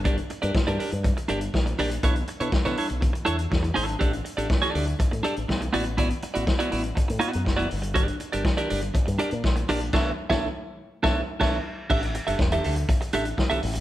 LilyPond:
<<
  \new Staff \with { instrumentName = "Clean electric guitar" } { \time 4/4 \key a \mixolydian \tempo 4 = 122 <d' g' bes' d''>16 r8 <d' g' bes' d''>16 r16 <d' g' bes' d''>16 <d' g' bes' d''>16 r8. <d' g' bes' d''>16 r8. <d' g' bes' d''>16 r16 | <d' e' a' cis''>16 r8 <d' e' a' cis''>16 r16 <d' e' a' cis''>16 <d' e' a' cis''>16 r8. <d' e' a' cis''>16 r8. <d' e' a' cis''>8 | <d' g' a' d''>16 r8 <d' g' a' d''>16 r16 <d' g' a' d''>16 <d' g' a' d''>16 r8. <d' g' a' d''>16 r8. <b e' fis' d''>16 r16 | <b e' fis' d''>16 r8 <b e' fis' d''>16 r16 <b e' fis' d''>16 <b e' fis' d''>16 r8. <b e' fis' d''>8 r16 <b e' fis' d''>16 r8 |
<d' g' bes' d''>8 r16 <d' g' bes' d''>16 r16 <d' g' bes' d''>16 <d' g' bes' d''>16 r8. <d' g' bes' d''>16 r8. <d' g' bes' d''>16 r16 | <d' a' cis'' e''>8 r16 <d' a' cis'' e''>8 r4 <d' a' cis'' e''>8 r16 <d' a' cis'' e''>8 r8 | <d' g' a' e''>16 r8 <d' g' a' e''>16 r16 <d' g' a' e''>16 <d' g' a' e''>16 r8. <d' g' a' e''>16 r8 <d' g' a' e''>16 r8 | }
  \new Staff \with { instrumentName = "Fingered electric bass" } { \clef bass \time 4/4 \key a \mixolydian g,,8 r16 g,16 r16 g,16 r16 g,8 r16 g,,8 bes,,8 bes,,8 | b,,8 r16 b,16 r16 b,16 r16 b,,8 r16 e,8 e,8 gis,,8 | a,,8 r16 a,,16 r8 d,8 r16 a,16 r16 a,,16 b,,8 a,,8~ | a,,8 r16 a,,16 r8 a,,8 r16 a,16 r16 fis,16 fis,,8 g,,8~ |
g,,8 r16 g,,16 r8 g,,8 r16 g,16 r16 bes,16 bes,,8 bes,,8 | b,,8 r16 b,,8 r4 b,,8 r16 b,,8 r8 | a,,8. fis,,16 e,,8 d,8 r8 a,,8 r16 b,,16 a,,16 gis,,16 | }
  \new DrumStaff \with { instrumentName = "Drums" } \drummode { \time 4/4 <hh bd>16 hh16 hh16 hh16 <bd sn>16 hh16 hho16 hh16 <hh bd>16 hh16 hh16 hh16 <bd sn>16 hh16 hho16 hh16 | <hh bd>16 hh16 hh16 hh16 <bd sn>16 <hh sn>16 hho16 hh16 <hh bd>16 hh16 hh16 hh16 <bd sn>16 hh16 hho16 hh16 | <hh bd>16 hh16 hh16 hh16 <bd sn>16 <hh sn>16 hho16 hh16 <hh bd>16 hh16 hh16 hh16 <bd sn>16 hh16 hho16 hh16 | <hh bd>16 hh16 hh16 hh16 <bd sn>16 hh16 hho16 hh16 <hh bd>16 hh16 hh16 hh16 <bd sn>16 hh16 hho16 hh16 |
<hh bd>16 hh16 hh16 hh16 <bd sn>16 hh16 hho16 hh16 <hh bd>16 hh16 hh16 hh16 <bd sn>16 hh16 hho16 hh16 | <cymc bd sn>8. <bd sn>16 r4 r16 <bd sn>8. <cymc bd sn>4 | <cymc bd>16 hh16 hh16 hh16 <bd sn>16 hh16 hho16 hh16 <hh bd>16 hh16 hh16 hh16 <bd sn>16 hh16 hho16 hh16 | }
>>